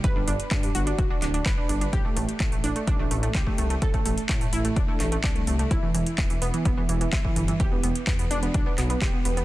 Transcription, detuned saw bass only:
X:1
M:4/4
L:1/8
Q:1/4=127
K:Em
V:1 name="Detuned saw bass" clef=bass
G,,, G,,, G,, G,,, D,,, D,,, G,,, G,,, | A,,, A,,, A,,, A,,, A,,, A,,, C,, C,, | A,,, A,,, A,, A,,, E,,, A,,, C,, C,, | E,,, E,,, E,,, E,,, E,,, E,,, G,,, G,,, |
E,,, E,,, E,, E,,, B,,, B,,, E,,, E,,, |]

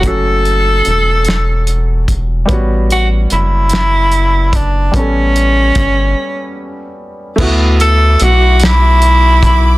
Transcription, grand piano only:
X:1
M:6/8
L:1/8
Q:3/8=49
K:D
V:1 name="Grand piano"
[F,A,CF]6 | [G,B,Fc]6 | [G,B,CA]6 | [A,B,EF]6 |]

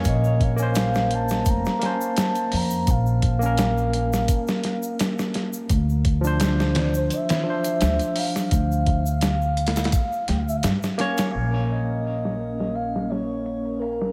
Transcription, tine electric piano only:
X:1
M:4/4
L:1/16
Q:"Swing 16ths" 1/4=85
K:Bbm
V:1 name="Tine electric piano"
[B,Dd]3 [B,Dc]6- [B,Dc] [B,Dc]6- | [B,Dc]3 [B,DB]12- [B,DB] | z3 [F,=Dc]6- [F,Dc] [F,Dc]6- | [F,=Dc]3 z8 z3 [B,_Dd]2 |
[B,DB]16 |]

